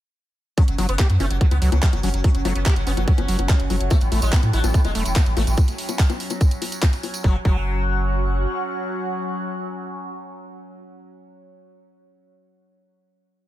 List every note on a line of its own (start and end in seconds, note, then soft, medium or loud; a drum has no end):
0.58 0.63 F#3 medium
0.58 7.23 F#3 medium
0.58 4.58 C#4 medium
0.58 0.63 C#4 loud
0.58 7.23 C#4 medium
0.58 kick loud
0.58 closed hi-hat medium
0.68 0.75 F#1 medium
0.68 0.74 F#3 medium
0.68 closed hi-hat medium
0.78 0.86 F#1 loud
0.78 0.87 F#3 medium
0.78 0.84 F#3 medium
0.78 open hi-hat loud
0.78 high bongo soft
0.83 4.58 F#4 medium
0.83 4.58 F#5 medium
0.89 0.96 F#1 medium
0.89 0.95 B3 medium
0.89 closed hi-hat medium
0.99 1.05 F#3 medium
0.99 1.08 G4 loud
0.99 kick loud
0.99 clap loud
0.99 closed hi-hat medium
0.99 high bongo medium
1.05 4.58 C#5 loud
1.10 1.17 F#2 medium
1.10 1.15 F#3 medium
1.10 closed hi-hat medium
1.20 1.28 F#1 loud
1.20 1.26 A3 loud
1.20 1.26 C#4 medium
1.20 open hi-hat loud
1.20 high bongo soft
1.30 1.38 F#1 loud
1.30 1.36 F#3 medium
1.30 closed hi-hat medium
1.41 1.47 F#3 medium
1.41 1.46 F#3 loud
1.41 kick loud
1.41 closed hi-hat medium
1.51 1.59 C#2 medium
1.51 1.57 B3 medium
1.51 closed hi-hat medium
1.51 high bongo soft
1.62 1.69 C#2 loud
1.62 1.68 F#3 medium
1.62 1.70 F#3 medium
1.62 open hi-hat loud
1.72 1.80 C#2 medium
1.72 1.78 F#3 medium
1.72 closed hi-hat medium
1.72 high bongo medium
1.83 1.88 G3 medium
1.83 1.88 A3 medium
1.83 kick loud
1.83 clap loud
1.83 closed hi-hat medium
1.93 2.00 F#1 medium
1.93 1.99 F#3 medium
1.93 closed hi-hat medium
1.93 high bongo soft
2.03 2.11 F#1 loud
2.03 2.09 F#3 loud
2.03 2.09 C#4 medium
2.03 open hi-hat loud
2.14 2.21 F#1 loud
2.14 2.20 F#3 medium
2.14 closed hi-hat medium
2.24 2.30 F#3 medium
2.24 2.30 C#4 medium
2.24 kick loud
2.24 closed hi-hat medium
2.24 high bongo soft
2.35 2.42 F#1 medium
2.35 2.40 F#3 medium
2.35 closed hi-hat medium
2.45 2.53 F#1 loud
2.45 2.53 F#3 medium
2.45 2.51 A3 medium
2.45 open hi-hat loud
2.45 high bongo medium
2.55 2.63 F#1 medium
2.55 2.61 F#3 medium
2.55 2.62 B3 medium
2.55 closed hi-hat medium
2.66 2.72 F#3 medium
2.66 2.73 B3 medium
2.66 2.74 G4 loud
2.66 kick loud
2.66 clap loud
2.66 closed hi-hat medium
2.66 high bongo soft
2.76 2.84 F#1 medium
2.76 2.82 F#3 medium
2.76 closed hi-hat medium
2.87 2.94 F#1 loud
2.87 2.92 B3 medium
2.87 2.92 C#4 medium
2.87 open hi-hat loud
2.97 3.05 F#1 medium
2.97 3.03 F#3 medium
2.97 closed hi-hat medium
2.97 high bongo soft
3.08 3.13 F#3 loud
3.08 3.83 C#4 medium
3.08 kick loud
3.08 closed hi-hat medium
3.18 3.25 F#1 medium
3.18 closed hi-hat medium
3.18 high bongo medium
3.28 3.36 F#1 loud
3.28 3.37 F#3 medium
3.28 open hi-hat loud
3.39 3.46 F#1 medium
3.39 closed hi-hat medium
3.39 high bongo soft
3.49 3.55 G3 medium
3.49 kick loud
3.49 clap loud
3.49 closed hi-hat medium
3.60 3.67 F#1 medium
3.60 closed hi-hat medium
3.70 3.78 F#1 loud
3.70 3.76 F#3 medium
3.70 3.95 A3 medium
3.70 open hi-hat loud
3.70 high bongo soft
3.81 3.88 F#1 loud
3.81 closed hi-hat medium
3.90 3.96 A3 medium
3.90 3.97 A3 loud
3.90 5.58 E4 loud
3.90 kick loud
3.90 closed hi-hat medium
3.90 tambourine medium
3.90 high bongo medium
4.01 4.09 A1 medium
4.01 4.07 A2 medium
4.01 closed hi-hat medium
4.01 tambourine soft
4.09 4.19 A1 loud
4.09 4.18 A2 medium
4.09 4.20 A3 medium
4.09 5.58 A4 medium
4.09 5.58 A5 medium
4.09 open hi-hat loud
4.09 high bongo soft
4.22 4.30 A1 medium
4.22 4.28 G#3 loud
4.22 closed hi-hat medium
4.22 tambourine medium
4.33 4.38 A2 medium
4.33 4.41 B3 loud
4.33 kick loud
4.33 clap loud
4.33 closed hi-hat medium
4.33 tambourine medium
4.43 4.50 A2 medium
4.43 4.49 A2 medium
4.43 closed hi-hat medium
4.43 tambourine soft
4.43 high bongo soft
4.53 4.61 A1 loud
4.53 4.59 F#3 medium
4.53 4.59 E4 medium
4.53 open hi-hat loud
4.57 5.58 E5 medium
4.64 4.71 A1 loud
4.64 4.70 A2 medium
4.64 closed hi-hat medium
4.64 tambourine medium
4.64 high bongo medium
4.74 4.80 A2 medium
4.74 4.80 A3 loud
4.74 kick loud
4.74 closed hi-hat medium
4.74 tambourine medium
4.84 4.92 E1 medium
4.84 4.90 G#3 medium
4.84 closed hi-hat medium
4.84 tambourine soft
4.84 high bongo soft
4.95 5.03 E1 loud
4.95 5.01 A2 medium
4.95 5.03 A3 medium
4.95 open hi-hat loud
5.06 5.13 E1 loud
5.06 5.11 A2 medium
5.06 closed hi-hat medium
5.06 tambourine medium
5.16 5.22 F#3 medium
5.16 5.21 B3 medium
5.16 kick loud
5.16 clap loud
5.16 closed hi-hat medium
5.16 tambourine medium
5.16 high bongo soft
5.26 5.34 A1 medium
5.26 5.32 A2 medium
5.26 closed hi-hat medium
5.26 tambourine soft
5.37 5.44 A1 loud
5.37 5.42 A3 medium
5.37 5.42 A3 loud
5.37 open hi-hat loud
5.37 high bongo medium
5.47 5.55 A1 loud
5.47 5.53 A2 medium
5.47 closed hi-hat medium
5.47 tambourine medium
5.57 kick loud
5.57 closed hi-hat medium
5.57 tambourine medium
5.57 high bongo soft
5.68 closed hi-hat medium
5.68 tambourine soft
5.78 open hi-hat loud
5.89 closed hi-hat medium
5.89 tambourine medium
5.89 high bongo soft
5.99 kick loud
5.99 clap loud
5.99 closed hi-hat medium
5.99 tambourine medium
6.10 closed hi-hat medium
6.10 tambourine soft
6.10 high bongo medium
6.20 open hi-hat loud
6.30 closed hi-hat medium
6.30 tambourine medium
6.30 high bongo soft
6.41 kick loud
6.41 closed hi-hat medium
6.41 tambourine medium
6.51 closed hi-hat medium
6.51 tambourine soft
6.62 open hi-hat loud
6.62 high bongo soft
6.72 closed hi-hat medium
6.72 tambourine medium
6.82 kick loud
6.82 clap loud
6.82 closed hi-hat medium
6.82 tambourine medium
6.82 high bongo medium
6.93 closed hi-hat medium
6.93 tambourine soft
7.03 open hi-hat loud
7.03 high bongo soft
7.14 closed hi-hat medium
7.14 tambourine medium
7.24 7.36 F#1 loud
7.24 7.36 F#3 loud
7.24 10.78 F#3 medium
7.24 10.78 C#4 medium
7.24 kick loud
7.31 10.84 F#4 medium
7.37 10.90 C#5 medium
7.43 8.45 F#1 loud
7.43 10.98 F#3 medium
7.43 7.57 F#3 medium
7.43 10.96 F#5 medium
7.43 kick loud